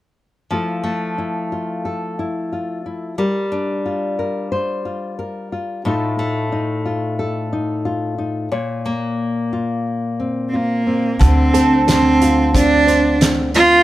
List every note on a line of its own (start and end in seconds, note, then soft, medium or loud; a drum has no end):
0.51 3.21 F3 soft
0.51 0.82 A3 soft
0.51 1.17 E4 soft
0.51 1.52 F4 soft
0.51 1.84 A4 soft
0.84 3.14 A3 soft
1.18 2.18 E4 soft
1.52 2.52 F4 soft
1.85 3.18 A4 soft
2.19 2.85 E4 soft
2.52 3.21 F4 soft
2.86 3.15 E4 soft
3.18 5.85 G3 soft
3.18 4.18 A#4 soft
3.52 5.81 D4 soft
3.86 4.85 F4 soft
4.19 4.51 A#4 soft
4.52 5.18 C5 soft
4.85 5.52 F4 soft
5.19 5.81 A#4 soft
5.52 5.87 F4 soft
5.85 8.51 A2 soft
5.85 6.18 A3 soft
5.85 6.51 D#4 soft
5.85 6.85 F4 soft
5.85 7.18 A4 soft
6.19 8.48 A3 soft
6.52 7.51 D#4 soft
6.85 7.85 F4 soft
7.19 8.52 A4 soft
7.53 8.17 D#4 soft
7.85 9.52 F4 soft
8.18 8.48 D#4 soft
8.52 11.16 A#2 soft
8.52 9.86 C#5 soft
8.86 11.17 A#3 soft
9.53 10.52 F4 soft
10.20 10.86 C4 soft
10.49 10.58 C4 soft
10.54 11.22 A#3 medium
10.54 11.17 F4 soft
10.87 11.53 C4 soft
11.19 13.83 D2 medium
11.19 13.83 D3 medium
11.19 11.85 C4 medium
11.19 kick medium
11.19 closed hi-hat medium
11.54 12.54 C4 medium
11.54 12.54 A4 medium
11.54 closed hi-hat medium
11.88 12.51 C4 medium
11.88 12.87 C5 medium
11.88 snare medium
11.88 closed hi-hat medium
12.22 13.83 F4 medium
12.22 closed hi-hat medium
12.54 13.20 C4 medium
12.54 13.18 D4 medium
12.54 kick medium
12.54 closed hi-hat medium
12.87 13.83 C5 medium
12.87 closed hi-hat soft
13.21 13.54 C4 soft
13.21 snare medium
13.21 closed hi-hat medium
13.54 13.83 C4 medium
13.54 13.83 F4 loud
13.54 closed hi-hat soft